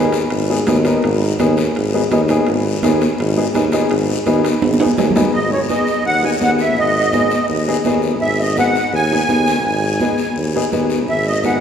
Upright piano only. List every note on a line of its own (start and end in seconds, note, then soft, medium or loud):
0.00 0.15 B3 medium
0.00 0.15 D#4 medium
0.00 0.15 G#4 medium
0.50 0.56 B3 medium
0.50 0.56 D#4 medium
0.50 0.56 G#4 medium
0.67 0.73 B3 medium
0.67 0.74 D#4 medium
0.67 0.74 G#4 medium
0.85 1.04 B3 medium
0.85 1.04 D#4 medium
0.85 1.04 A#4 medium
1.39 1.58 B3 medium
1.39 1.58 D#4 medium
1.39 1.58 G#4 medium
1.94 2.00 B3 medium
1.94 2.00 D#4 medium
1.94 2.00 G#4 medium
2.12 2.18 B3 medium
2.12 2.18 D#4 medium
2.12 2.18 G#4 medium
2.29 2.48 B3 medium
2.29 2.48 D#4 medium
2.29 2.49 G#4 medium
2.83 3.02 B3 medium
2.83 3.02 D#4 medium
2.83 3.02 G#4 medium
3.36 3.43 B3 medium
3.36 3.43 D#4 medium
3.36 3.43 G#4 medium
3.55 3.61 B3 medium
3.55 3.61 D#4 medium
3.55 3.61 G#4 medium
3.73 3.92 B3 medium
3.73 3.92 D#4 medium
3.73 3.92 G#4 medium
4.26 4.45 B3 medium
4.26 4.46 D#4 medium
4.26 4.46 G#4 medium
4.80 4.87 B3 medium
4.80 4.87 D#4 medium
4.80 4.87 G#4 medium
4.97 5.04 B3 medium
4.97 5.04 D#4 medium
4.97 5.05 G#4 medium
5.16 5.34 B3 medium
5.16 5.34 D#4 medium
5.16 5.34 G#4 medium
5.70 5.89 B3 medium
5.70 5.89 D#4 medium
5.70 5.89 G#4 medium
6.23 6.30 B3 medium
6.23 6.30 D#4 soft
6.23 6.30 G#4 medium
6.40 6.66 B3 medium
6.40 6.66 D#4 soft
6.40 6.67 G#4 medium
7.13 7.32 B3 medium
7.13 7.32 D#4 medium
7.13 7.33 G#4 medium
7.68 7.74 B3 medium
7.68 7.74 D#4 medium
7.68 7.74 G#4 medium
7.85 8.11 B3 medium
7.85 8.11 D#4 medium
7.85 8.11 G#4 medium
8.58 8.76 B3 medium
8.58 8.76 D#4 medium
8.58 8.77 G#4 medium
9.12 9.18 B3 medium
9.12 9.18 D#4 medium
9.12 9.18 G#4 medium
9.28 9.54 B3 medium
9.28 9.54 D#4 soft
9.28 9.54 G#4 medium
10.01 10.20 B3 medium
10.01 10.20 D#4 medium
10.01 10.20 G#4 medium
10.55 10.61 B3 medium
10.55 10.62 D#4 medium
10.55 10.62 G#4 medium
10.72 10.98 B3 medium
10.72 10.98 D#4 medium
10.72 10.98 G#4 medium
11.45 11.60 B3 medium
11.45 11.60 D#4 medium
11.45 11.60 G#4 medium